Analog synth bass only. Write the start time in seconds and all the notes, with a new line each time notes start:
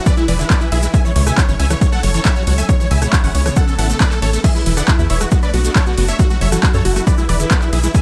0.28 E1
0.72 B1
1.16 C#2
1.49 G#1
1.60 C#2
2.03 F#1
2.47 C#2
2.91 C#2
3.24 G#1
3.35 C#2
3.78 A1
4.22 A1
4.66 E1
4.99 E2
5.10 E1
5.54 B1
5.98 F#1
6.41 F#1
6.74 F#2
6.85 F#1
7.29 E1
7.73 B1